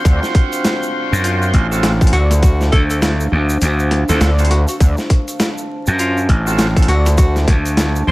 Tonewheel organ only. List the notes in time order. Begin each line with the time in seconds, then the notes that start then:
Already playing: C4 F4 F#4 C5
1.71 C4 F4 F#4 A4
2.01 C4 F4 F#4 A4
4.09 C4 F4 F#4 A4
4.39 C4 F4 F#4 A4
6.47 C4 F4 F#4 A4
6.76 C4 F4 F#4 A4